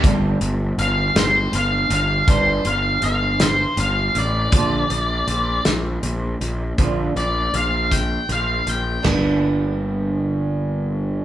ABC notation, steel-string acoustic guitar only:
X:1
M:6/8
L:1/8
Q:3/8=53
K:Gm
V:1 name="Steel-string acoustic guitar" clef=bass
[G,,D,G,] D, [G,,D,] [G,,D,] [G,,D,] [G,,D,] | [G,,D,G,] [G,,D,] [G,,D,] [G,,D,] [G,,D,] [G,,D,] | [B,,D,F,] [B,,D,] [B,,D,] [B,,D,] [B,,D,] [B,,D,] | [B,,D,F,] B,, [B,,D,] [B,,D,] [B,,D,] [B,,D,] |
[G,,D,G,B,D]6 |]